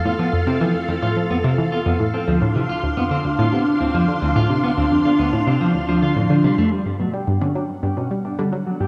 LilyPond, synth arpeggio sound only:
\new Staff \with { instrumentName = "Synth arpeggio sound" } { \clef bass \time 4/4 \key d \dorian \tempo 4 = 108 a,16 f16 f,16 c16 e16 r16 f,16 a,16 f16 f,16 c16 e16 r16 f,16 a,16 f16 | d,16 a,16 c16 r16 d,16 f,16 d16 d,16 a,16 c16 r16 d,16 f,16 d16 d,16 a,16 | c16 r16 d,16 f,16 d16 d,16 a,16 c16 r16 d,16 d,16 d16 a,16 d16 c16 f,16 | \key g \lydian r16 g,16 b,16 g16 g,16 d16 fis16 r16 g,16 b,16 g16 g,16 d16 fis16 r16 g,16 | }